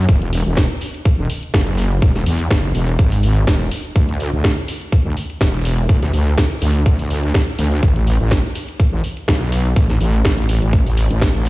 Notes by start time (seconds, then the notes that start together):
0.09 E1, kick, closed hi-hat
0.22 closed hi-hat
0.33 open hi-hat
0.46 E1
0.57 kick, snare, closed hi-hat
0.81 open hi-hat
0.94 closed hi-hat
1.05 kick, closed hi-hat
1.18 E1
1.30 open hi-hat
1.43 closed hi-hat
1.54 F#1, kick, snare, closed hi-hat
1.67 closed hi-hat
1.78 open hi-hat
1.91 closed hi-hat
2.02 E1, kick, closed hi-hat
2.15 snare, closed hi-hat
2.26 E2, open hi-hat
2.39 closed hi-hat
2.51 F#1, kick, snare, closed hi-hat
2.75 E1, open hi-hat
2.88 closed hi-hat
2.99 G#1, kick, closed hi-hat
3.12 open hi-hat
3.23 open hi-hat
3.36 closed hi-hat
3.47 E1, kick, snare, closed hi-hat
3.60 closed hi-hat
3.71 open hi-hat
3.85 closed hi-hat
3.96 D2, kick, closed hi-hat
4.09 closed hi-hat
4.20 open hi-hat
4.33 D2
4.44 kick, snare, closed hi-hat
4.68 open hi-hat
4.81 closed hi-hat
4.92 kick, closed hi-hat
5.05 D2
5.17 open hi-hat
5.30 closed hi-hat
5.41 E1, kick, snare, closed hi-hat
5.54 closed hi-hat
5.65 open hi-hat
5.78 closed hi-hat
5.89 D2, kick, closed hi-hat
6.02 snare, closed hi-hat
6.13 D2, open hi-hat
6.27 closed hi-hat
6.38 kick, snare, closed hi-hat
6.62 D2, open hi-hat
6.75 closed hi-hat
6.86 kick, closed hi-hat
6.99 D2, open hi-hat
7.10 open hi-hat
7.23 closed hi-hat
7.34 kick, snare, closed hi-hat
7.48 closed hi-hat
7.59 D2, open hi-hat
7.72 closed hi-hat
7.83 A1, kick, closed hi-hat
7.96 closed hi-hat
8.07 open hi-hat
8.20 A1
8.31 kick, snare, closed hi-hat
8.55 open hi-hat
8.68 closed hi-hat
8.80 kick, closed hi-hat
8.93 A1
9.04 open hi-hat
9.17 closed hi-hat
9.28 B1, kick, snare, closed hi-hat
9.41 closed hi-hat
9.52 open hi-hat
9.65 closed hi-hat
9.76 A1, kick, closed hi-hat
9.90 snare, closed hi-hat
10.01 A1, open hi-hat
10.14 closed hi-hat
10.25 A1, kick, snare, closed hi-hat
10.38 closed hi-hat
10.49 open hi-hat
10.62 A1, closed hi-hat
10.73 kick, closed hi-hat
10.86 open hi-hat
10.97 open hi-hat
11.10 A1, closed hi-hat
11.21 kick, snare, closed hi-hat
11.34 A1, closed hi-hat
11.46 open hi-hat